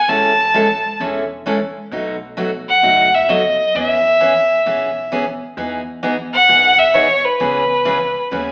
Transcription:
Already playing: fiddle G#5
0.08 upright bass A1, steel-string acoustic guitar E3 G#3 C#4 E4 A4, fiddle A5
0.54 steel-string acoustic guitar E3 G#3 C#4 E4 A4
1.00 upright bass E1, steel-string acoustic guitar E3 G#3 C#4 E4 A4
1.46 steel-string acoustic guitar E3 G#3 C#4 E4 A4
1.91 upright bass B1, steel-string acoustic guitar B2 F#3 A3 D#4 F#4
2.37 steel-string acoustic guitar B2 F#3 A3 D#4 F#4
2.69 fiddle F#5
2.83 upright bass F#1, steel-string acoustic guitar B2 F#3 A3 D#4 F#4
3.15 fiddle E5
3.28 steel-string acoustic guitar B2 F#3 A3 D#4 F#4, fiddle D#5
3.75 upright bass E2, steel-string acoustic guitar E3 B3 C#4 G#4, fiddle D#5
3.86 fiddle E5
4.20 steel-string acoustic guitar E3 B3 C#4 G#4
4.66 upright bass B1, steel-string acoustic guitar E3 B3 C#4 G#4
5.12 steel-string acoustic guitar E3 B3 C#4 G#4
5.57 upright bass E2, steel-string acoustic guitar E3 B3 D#4 G#4
6.03 steel-string acoustic guitar E3 B3 D#4 G#4
6.33 fiddle F#5
6.48 upright bass B1, steel-string acoustic guitar E3 B3 D#4 G#4
6.79 fiddle E5
6.94 steel-string acoustic guitar E3 B3 D#4 G#4, fiddle C#5
7.25 fiddle B4
7.40 upright bass C#2, steel-string acoustic guitar C#3 E3 B3 C#4 G#4
7.85 steel-string acoustic guitar C#3 E3 B3 C#4 G#4
8.31 upright bass D#2, steel-string acoustic guitar C#3 E3 B3 C#4 G#4

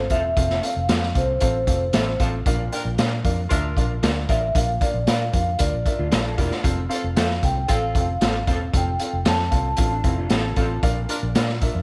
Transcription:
Already playing: fingered electric bass A1
0.10 fingered electric bass E1, grand piano C4 F4 A4 F5, clean electric guitar F4 A4 C5 F5, vibraphone E5, kick, closed hi-hat
0.37 fingered electric bass F1, grand piano C4 F4 A4 F5, kick, closed hi-hat
0.50 snare
0.62 grand piano C4 F4 A4 F5, vibraphone F5, closed hi-hat
0.76 fingered electric bass F1
0.89 fingered electric bass F2, grand piano C4 F4 A4 F5, clean electric guitar F4 A4 C5 F5, snare, closed hi-hat
1.03 snare
1.15 fingered electric bass C2, grand piano C4 F4 A4 F5, vibraphone C5, kick, closed hi-hat
1.40 fingered electric bass A1, grand piano C4 F4 A4 F5, kick, closed hi-hat
1.67 fingered electric bass F1, grand piano C4 F4 A4 F5, kick, closed hi-hat
1.93 fingered electric bass A1, grand piano C4 F4 A4 E5, clean electric guitar F4 A4 C5 F5, snare, closed hi-hat
2.20 fingered electric bass A1, grand piano C4 F4 A4 F5, clean electric guitar F4 A4 C5 F5, kick, closed hi-hat
2.46 fingered electric bass A#1, grand piano A#2 D4 F4 A#4 F5, kick, closed hi-hat
2.72 saxophone section D4 F4 A#4, grand piano D4 F4 A#4 G5, closed hi-hat
2.85 fingered electric bass A#1
2.98 fingered electric bass A#2, grand piano D4 F4 A#4 F5, clean electric guitar F4 A#4 D5 F5, snare, closed hi-hat
3.25 fingered electric bass F2, grand piano D4 F4 A#4 F5, kick, closed hi-hat
3.50 fingered electric bass D2, saxophone section D4 F4 A#4, grand piano D4 F4 A#4 E5, kick, closed hi-hat
3.77 fingered electric bass A#1, grand piano D4 F4 A#4 F5, kick, closed hi-hat
4.03 fingered electric bass D2, grand piano D4 F4 A#4 F5, clean electric guitar F4 A#4 D5 F5, snare, closed hi-hat
4.29 fingered electric bass A1, grand piano D4 F4 A#4 F5, clean electric guitar F4 A#4 D5 F5, vibraphone E5, kick, closed hi-hat
4.55 fingered electric bass A#1, grand piano A#2 D4 F4 A#4 F5, vibraphone F5, kick, closed hi-hat
4.81 grand piano D4 F4 A#4 F5, vibraphone D5, kick, closed hi-hat
4.94 fingered electric bass A#1
5.07 fingered electric bass A#2, grand piano D4 F4 A#4 F5, clean electric guitar F4 A#4 D5 F5, vibraphone F5, snare, closed hi-hat
5.33 fingered electric bass F2, grand piano D4 F4 A#4 F5, vibraphone F5, kick, closed hi-hat
5.59 fingered electric bass D2, grand piano D4 F4 A#4 F5, vibraphone D5, kick, closed hi-hat
5.73 fingered electric bass A#1
5.86 grand piano D4 F4 A#4 E5, kick, closed hi-hat
5.99 fingered electric bass D2, clean electric guitar D4 F4
6.11 fingered electric bass A#1, grand piano D4 F4 A#4 F5, clean electric guitar E4 F4 G4 A#4 D5 F5, snare, closed hi-hat
6.25 clean electric guitar F4 A4
6.37 fingered electric bass E1, grand piano D4 F4 A#4 F5, clean electric guitar E4 F4 G4 A#4 D5 F5, kick, closed hi-hat
6.51 clean electric guitar D4 F4, snare
6.63 fingered electric bass F1, grand piano C4 F4 A4 F5, kick, closed hi-hat
6.89 grand piano C4 F4 A4 F5, saxophone section C4 F4 A4, closed hi-hat
7.04 fingered electric bass F1
7.16 fingered electric bass F2, grand piano C4 F4 A4 E5, clean electric guitar F4 A4 C5 F5, vibraphone F5, snare, closed hi-hat
7.31 snare
7.42 fingered electric bass C2, grand piano C4 F4 A4 F5, vibraphone G5, kick, closed hi-hat
7.68 fingered electric bass A1, saxophone section C4 F4 A4, grand piano C4 F4 A4 G5, vibraphone F5, kick, closed hi-hat
7.95 fingered electric bass F1, grand piano C4 F4 A4 F5, kick, closed hi-hat
8.21 fingered electric bass A1, grand piano C4 F4 A4 F5, clean electric guitar F4 A4 C5 F5, snare, closed hi-hat
8.47 fingered electric bass E1, grand piano C4 F4 A4 F5, clean electric guitar F4 A4 C5 F5, kick, closed hi-hat
8.73 fingered electric bass F1, grand piano C4 F4 A4 F5, vibraphone G5, kick, closed hi-hat
8.99 grand piano C4 F4 A4 F5, closed hi-hat
9.13 fingered electric bass F1
9.25 fingered electric bass F2, grand piano C4 F4 A4 D5, clean electric guitar F4 A4 C5 F5, vibraphone A5, snare, closed hi-hat
9.39 snare
9.51 fingered electric bass C2, grand piano C4 F4 A4 F5, vibraphone A5, kick, closed hi-hat
9.77 fingered electric bass A1, grand piano C4 F4 A4 F5, clean electric guitar D4 F4, kick, closed hi-hat
9.92 clean electric guitar D4
10.04 fingered electric bass F1, grand piano C4 F4 A4 F5, clean electric guitar C4 E4, kick, closed hi-hat
10.18 clean electric guitar D4 F4
10.29 fingered electric bass A1, grand piano C4 F4 A4 F5, clean electric guitar E4 F4 G4 A4 C5 F5, snare, closed hi-hat
10.44 clean electric guitar F4 A4
10.56 fingered electric bass A1, grand piano C4 F4 A4 F5, clean electric guitar F4 A4 C5 F5, kick, closed hi-hat
10.83 fingered electric bass A#1, grand piano A#2 D4 F4 A#4 F5, kick, closed hi-hat
11.09 saxophone section D4 F4 A#4, grand piano D4 F4 A#4 D5, closed hi-hat
11.23 fingered electric bass A#1
11.35 fingered electric bass A#2, grand piano D4 F4 A#4 F5, clean electric guitar F4 A#4 D5 F5, snare, closed hi-hat
11.49 snare
11.61 grand piano D4 F4 A#4 E5, kick, closed hi-hat
11.75 fingered electric bass F2

